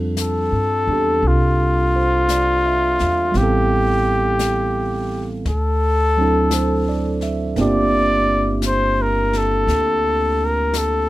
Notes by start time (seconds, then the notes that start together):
Already playing: F2 G3 C4 D4 F4 A4
0.17 brush sweep, snare, hi-hat pedal
0.22 A4
0.52 G2
0.87 E2 D4
0.92 G4 A4
1.22 C2, brush sweep
1.28 F4
1.96 C5
2.29 D5, brush sweep, snare, hi-hat pedal
2.66 E5
2.99 E2 F5, snare
3.32 A1 G3 B3, brush sweep, snare
3.37 C4 E4 G4
3.43 A4
4.39 brush sweep, snare, hi-hat pedal
5.45 D2 A4, brush sweep, snare
6.17 F#3 C4 D4
6.21 E4 A4
6.51 C5, brush sweep, snare, hi-hat pedal
6.89 D5
7.21 E5, snare
7.56 G1 A#3 C4 D4 F4, brush sweep, snare
7.61 G4 D5
8.62 brush sweep, snare, hi-hat pedal
8.67 C5
9.02 A#4
9.33 snare
9.38 A4
9.67 D2, brush sweep, snare
10.45 A#4
10.73 brush sweep, snare, hi-hat pedal
10.78 A4